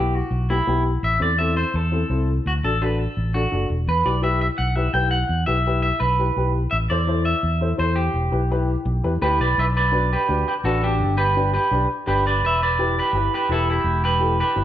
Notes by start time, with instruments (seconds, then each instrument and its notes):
Already playing: fingered electric bass B1, upright piano B3 E4 G4, clean electric guitar G4
0.15 clean electric guitar F#4
0.31 fingered electric bass B1
0.50 upright piano B3 E4 G4, clean electric guitar E4
0.67 fingered electric bass B1, upright piano B3 E4 G4
1.03 fingered electric bass A1, clean electric guitar E5
1.20 fingered electric bass E2, upright piano C4 E4 A4, clean electric guitar D5
1.39 upright piano C4 E4 A4, clean electric guitar E5
1.57 clean electric guitar C5
1.74 fingered electric bass E2, clean electric guitar A4
1.92 upright piano C4 E4 A4
2.10 fingered electric bass C2, upright piano C4 E4 A4
2.46 fingered electric bass D2, clean electric guitar F#4
2.63 fingered electric bass A1, upright piano D4 F#4 A4, clean electric guitar A4
2.81 upright piano D4 F#4 A4, clean electric guitar B4
2.99 clean electric guitar A4
3.17 fingered electric bass A1
3.34 upright piano D4 F#4 A4, clean electric guitar F#4
3.52 fingered electric bass F#1, upright piano D4 F#4 A4
3.70 fingered electric bass E1
3.87 fingered electric bass E2, clean electric guitar B4
4.05 fingered electric bass B1, upright piano E4 G4 B4, clean electric guitar D5
4.22 upright piano E4 G4 B4, clean electric guitar E5
4.41 clean electric guitar E5
4.58 fingered electric bass B1, clean electric guitar F#5
4.75 upright piano E4 G4 B4, clean electric guitar E5
4.94 fingered electric bass B1, upright piano E4 G4 B4, clean electric guitar G5
5.11 clean electric guitar F#5
5.29 fingered electric bass E2
5.46 fingered electric bass B1, upright piano E4 G4 B4, clean electric guitar E5
5.67 upright piano E4 G4 B4
5.83 clean electric guitar E5
6.00 fingered electric bass B1, clean electric guitar B4
6.19 upright piano E4 G4 B4
6.37 fingered electric bass B1, upright piano E4 G4 B4
6.71 fingered electric bass A1, clean electric guitar E5
6.90 fingered electric bass E2, upright piano E4 A4 C5, clean electric guitar D5
7.07 upright piano E4 A4 C5
7.25 clean electric guitar E5
7.43 fingered electric bass E2
7.61 upright piano E4 A4 C5
7.77 fingered electric bass E2, upright piano E4 A4 C5, clean electric guitar C5
7.96 clean electric guitar G4
8.14 fingered electric bass E1
8.31 fingered electric bass B1, upright piano E4 G4 B4
8.51 upright piano E4 G4 B4
8.85 fingered electric bass B1
9.04 fingered electric bass E2, upright piano E4 G4 B4
9.22 fingered electric bass D2, upright piano E4 G4 B4, clean electric guitar G4 B4
9.40 fingered electric bass B1, clean electric guitar B4 D5
9.58 fingered electric bass B1, clean electric guitar B4 E5
9.77 clean electric guitar B4 D5
9.92 upright piano D4 F#4 B4
10.13 clean electric guitar G4 B4
10.28 fingered electric bass D2, upright piano D4 F#4 B4
10.48 clean electric guitar G4 B4
10.64 fingered electric bass A1, upright piano D4 F#4 B4, clean electric guitar F#4 A4
10.83 clean electric guitar D4 G4
11.00 fingered electric bass G1
11.17 clean electric guitar G4 B4
11.36 upright piano D4 G4 B4
11.54 clean electric guitar G4 B4
11.71 fingered electric bass B1, upright piano D4 G4 B4
12.07 fingered electric bass G1, upright piano D4 G4 B4, clean electric guitar G4 B4
12.27 clean electric guitar B4 D5
12.42 fingered electric bass E1, clean electric guitar B4 E5
12.62 clean electric guitar B4 D5
12.79 upright piano E4 G4 B4
12.99 clean electric guitar G4 B4
13.13 fingered electric bass G1, upright piano E4 G4 B4
13.34 clean electric guitar G4 B4
13.49 fingered electric bass E1, upright piano E4 G4 B4, clean electric guitar E4 A4
13.70 clean electric guitar E4 G4
13.84 fingered electric bass E1
14.04 clean electric guitar G4 B4
14.20 upright piano E4 G4 A4
14.40 clean electric guitar G4 B4
14.56 fingered electric bass G1, upright piano E4 G4 B4